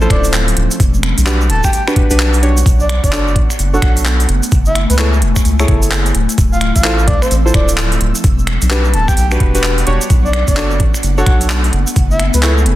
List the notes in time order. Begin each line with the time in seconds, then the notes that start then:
Already playing: F3 A3 C4 C#4
0.01 E4 F4 A4 C5, shaker
0.10 D1 D5, finger snap, kick, closed hi-hat
0.24 closed hi-hat, shaker
0.33 clap, shaker
0.48 closed hi-hat, shaker
0.57 D1, closed hi-hat
0.71 closed hi-hat, shaker
0.80 E1 G3 B3 D4 F#5, kick, closed hi-hat, shaker
0.94 shaker
1.03 finger snap, closed hi-hat
1.18 B1, closed hi-hat, shaker
1.26 D4 F#4 G4 B4, clap, shaker
1.41 shaker
1.50 D1 A5, closed hi-hat
1.64 G5, finger snap, kick, shaker
1.73 G5, closed hi-hat, shaker
1.87 D4 F#4 G4 B4, finger snap, shaker
1.96 kick, closed hi-hat
2.10 B1 D4 F#4 G4 B4, closed hi-hat, shaker
2.20 clap, shaker
2.33 closed hi-hat, shaker
2.43 D4 F#4 G4 C#5, closed hi-hat
2.57 closed hi-hat, shaker
2.66 B1 A3 B3 D4, kick, closed hi-hat, shaker
2.80 D5, shaker
2.89 D5, finger snap, closed hi-hat
3.04 F#1 D5, kick, closed hi-hat, shaker
3.12 D4 F#4 A4 C#5, clap, shaker
3.28 shaker
3.36 A1, kick, closed hi-hat
3.50 finger snap, shaker
3.59 F#1, closed hi-hat, shaker
3.73 D4 F#4 A4 C#5 F#5, shaker
3.82 B1 F#5, finger snap, kick, closed hi-hat
3.97 closed hi-hat, shaker
4.05 clap, shaker
4.20 closed hi-hat, shaker
4.29 F#1 E4 G#5, closed hi-hat
4.43 closed hi-hat, shaker
4.51 F#1, kick, closed hi-hat, shaker
4.66 E5, shaker
4.75 finger snap, closed hi-hat
4.90 C#2 B4, closed hi-hat, shaker
4.98 E4 G#4 A4 B4 C#5, clap, shaker
5.13 shaker
5.22 E1, closed hi-hat
5.36 finger snap, kick, shaker
5.45 C#2, closed hi-hat, shaker
5.60 E4 G#4 A4 C#5, finger snap, shaker
5.68 F#1, kick, closed hi-hat
5.82 closed hi-hat, shaker
5.91 clap, shaker
6.06 closed hi-hat, shaker
6.15 D1 F3 C4 E6, closed hi-hat
6.29 closed hi-hat, shaker
6.38 D1, kick, closed hi-hat, shaker
6.52 F5, shaker
6.61 F5, finger snap, closed hi-hat
6.75 A1 F5, kick, closed hi-hat, shaker
6.84 E4 F4 A4 C5, clap, shaker
6.99 shaker
7.07 C2 D5, kick, closed hi-hat
7.22 C5, finger snap, shaker
7.31 A1, closed hi-hat, shaker
7.45 E4 F4 A4 C5, shaker
7.54 D1 D5, finger snap, kick, closed hi-hat
7.68 closed hi-hat, shaker
7.77 clap, shaker
7.92 closed hi-hat, shaker
8.01 D1, closed hi-hat
8.15 closed hi-hat, shaker
8.24 E1 G3 B3 D4 F#5, kick, closed hi-hat, shaker
8.39 shaker
8.47 finger snap, closed hi-hat
8.62 B1, closed hi-hat, shaker
8.70 D4 F#4 G4 B4, clap, shaker
8.85 shaker
8.94 D1 A5, closed hi-hat
9.08 G5, finger snap, kick, shaker
9.17 B1 G5, closed hi-hat, shaker
9.31 D4 F#4 G4 B4, finger snap, shaker
9.40 E1, kick, closed hi-hat
9.55 D4 F#4 G4 B4, closed hi-hat, shaker
9.63 clap, shaker
9.78 closed hi-hat, shaker
9.87 E1 D4 F#4 G4 C#5, closed hi-hat
10.01 closed hi-hat, shaker
10.10 B1 A3 B3 D4, kick, closed hi-hat, shaker
10.24 D5, shaker
10.33 D5, finger snap, closed hi-hat
10.48 F#1 D5, kick, closed hi-hat, shaker
10.57 D4 F#4 A4 C#5, clap, shaker
10.71 shaker
10.80 A1, kick, closed hi-hat
10.94 finger snap, shaker
11.03 F#1, closed hi-hat, shaker
11.18 D4 F#4 A4 C#5 F#5, shaker
11.26 B1 F#5, finger snap, kick, closed hi-hat
11.41 closed hi-hat, shaker
11.50 clap, shaker
11.64 closed hi-hat, shaker
11.73 F#1 E4 G#5, closed hi-hat
11.87 closed hi-hat, shaker
11.96 F#1, kick, closed hi-hat, shaker
12.11 E5, shaker
12.20 finger snap, closed hi-hat
12.34 C#2 B4, closed hi-hat, shaker
12.43 E4 G#4 A4 B4 C#5, clap, shaker
12.58 shaker
12.66 E1, closed hi-hat